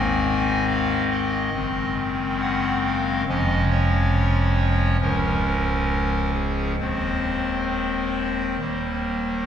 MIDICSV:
0, 0, Header, 1, 2, 480
1, 0, Start_track
1, 0, Key_signature, -4, "major"
1, 0, Tempo, 863309
1, 1821, Time_signature, 4, 2, 24, 8
1, 2782, Tempo, 899550
1, 5160, End_track
2, 0, Start_track
2, 0, Title_t, "Pipe organ"
2, 0, Program_c, 0, 19
2, 0, Note_on_c, 0, 32, 82
2, 0, Note_on_c, 0, 44, 79
2, 0, Note_on_c, 0, 51, 69
2, 0, Note_on_c, 0, 56, 70
2, 0, Note_on_c, 0, 60, 59
2, 0, Note_on_c, 0, 80, 127
2, 363, Note_off_c, 0, 80, 0
2, 377, Note_on_c, 0, 77, 127
2, 580, Note_off_c, 0, 77, 0
2, 617, Note_on_c, 0, 75, 89
2, 830, Note_off_c, 0, 44, 0
2, 831, Note_off_c, 0, 32, 0
2, 831, Note_off_c, 0, 51, 0
2, 831, Note_off_c, 0, 60, 0
2, 832, Note_off_c, 0, 56, 0
2, 853, Note_on_c, 0, 60, 60
2, 854, Note_on_c, 0, 30, 76
2, 854, Note_on_c, 0, 51, 61
2, 854, Note_on_c, 0, 56, 62
2, 856, Note_on_c, 0, 42, 76
2, 1082, Note_off_c, 0, 75, 0
2, 1339, Note_on_c, 0, 78, 123
2, 1545, Note_off_c, 0, 78, 0
2, 1585, Note_on_c, 0, 77, 110
2, 1787, Note_off_c, 0, 77, 0
2, 1798, Note_off_c, 0, 56, 0
2, 1798, Note_off_c, 0, 60, 0
2, 1799, Note_off_c, 0, 30, 0
2, 1799, Note_off_c, 0, 51, 0
2, 1800, Note_off_c, 0, 42, 0
2, 1826, Note_on_c, 0, 53, 60
2, 1827, Note_on_c, 0, 29, 70
2, 1827, Note_on_c, 0, 41, 78
2, 1827, Note_on_c, 0, 56, 65
2, 1828, Note_on_c, 0, 61, 60
2, 1828, Note_on_c, 0, 75, 124
2, 2028, Note_off_c, 0, 75, 0
2, 2060, Note_on_c, 0, 73, 118
2, 2762, Note_off_c, 0, 73, 0
2, 2764, Note_off_c, 0, 41, 0
2, 2764, Note_off_c, 0, 53, 0
2, 2764, Note_off_c, 0, 56, 0
2, 2765, Note_off_c, 0, 29, 0
2, 2765, Note_off_c, 0, 61, 0
2, 2786, Note_on_c, 0, 37, 66
2, 2786, Note_on_c, 0, 56, 54
2, 2786, Note_on_c, 0, 70, 109
2, 2787, Note_on_c, 0, 53, 52
2, 2788, Note_on_c, 0, 25, 65
2, 2788, Note_on_c, 0, 61, 57
2, 3475, Note_off_c, 0, 70, 0
2, 3493, Note_on_c, 0, 68, 79
2, 3698, Note_off_c, 0, 68, 0
2, 3715, Note_off_c, 0, 37, 0
2, 3715, Note_off_c, 0, 53, 0
2, 3715, Note_off_c, 0, 56, 0
2, 3716, Note_off_c, 0, 25, 0
2, 3716, Note_off_c, 0, 61, 0
2, 3739, Note_on_c, 0, 60, 47
2, 3740, Note_on_c, 0, 27, 58
2, 3740, Note_on_c, 0, 39, 59
2, 3740, Note_on_c, 0, 56, 44
2, 3741, Note_on_c, 0, 72, 88
2, 3744, Note_on_c, 0, 51, 49
2, 4685, Note_off_c, 0, 60, 0
2, 4686, Note_off_c, 0, 27, 0
2, 4686, Note_off_c, 0, 39, 0
2, 4686, Note_off_c, 0, 56, 0
2, 4687, Note_off_c, 0, 51, 0
2, 4702, Note_on_c, 0, 27, 53
2, 4703, Note_on_c, 0, 55, 47
2, 4704, Note_on_c, 0, 51, 47
2, 4705, Note_on_c, 0, 58, 45
2, 4706, Note_on_c, 0, 39, 58
2, 5160, Note_off_c, 0, 27, 0
2, 5160, Note_off_c, 0, 39, 0
2, 5160, Note_off_c, 0, 51, 0
2, 5160, Note_off_c, 0, 55, 0
2, 5160, Note_off_c, 0, 58, 0
2, 5160, Note_off_c, 0, 72, 0
2, 5160, End_track
0, 0, End_of_file